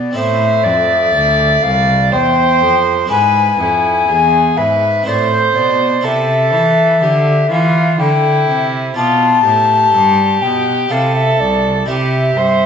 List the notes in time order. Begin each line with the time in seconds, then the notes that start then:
Already playing: B2 A4 D5
0.11 C4 E4 A4
0.15 A2 C5 E5
0.64 F2 D5
1.14 D2
1.62 C2 F5
2.12 E2 C5 G5
2.61 F2
3.05 D4 E4 B4
3.10 G#2 B4 G#5
3.59 F2 E4
4.08 E2 G#4
4.57 G#2 B4 E5
5.02 C4 E4 C5
5.06 A2 C5 D5
5.32 C5
5.55 B2 D5
6.01 C3 E4 A4 C5 E5
6.53 E3
7.01 D3 G4
7.50 E3 F4 F5
7.99 D3 E4 G5
8.48 C3
8.94 B2 F4 D5 A5
9.44 A2 G4
9.93 G2
10.42 B2 G5
10.89 C3 E4 A4 C5 F5
11.16 E5
11.40 C2 D5
11.86 C3 E4 G4 C5 E5
12.37 G2 C5